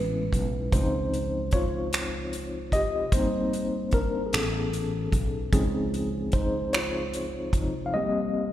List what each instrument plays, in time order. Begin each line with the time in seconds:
Already playing: fretless electric bass A1, tine electric piano G#3 B3 C#4 E4 B4
0.33 fretless electric bass B1, kick, closed hi-hat
0.72 fretless electric bass C#2, tine electric piano F3 C4 D#4 C5, kick, closed hi-hat
1.14 closed hi-hat
1.51 tine electric piano F4 C#5, kick, closed hi-hat
1.93 finger snap, closed hi-hat
2.33 closed hi-hat
2.72 tine electric piano G4 D#5, kick, closed hi-hat
3.12 fretless electric bass G#1, tine electric piano G3 A#3 C4 D#4 C5, kick, closed hi-hat
3.53 closed hi-hat
3.91 tine electric piano A#4, kick, closed hi-hat
3.96 tine electric piano D4
4.26 tine electric piano G#4
4.33 fretless electric bass A1, tine electric piano B3 C#4 G#4 A4, finger snap, closed hi-hat
4.73 closed hi-hat
5.12 fretless electric bass B1, kick, closed hi-hat
5.53 fretless electric bass C#2, tine electric piano F3 C4 D#4 G#4, kick, closed hi-hat
5.94 closed hi-hat
6.32 tine electric piano D#4 C5, kick, closed hi-hat
6.73 tine electric piano F4 C#5, finger snap, closed hi-hat
7.14 closed hi-hat
7.53 tine electric piano C3 F3 D#4, kick, closed hi-hat
7.86 tine electric piano F5
7.94 tine electric piano G3 A#3 C4 G4 D#5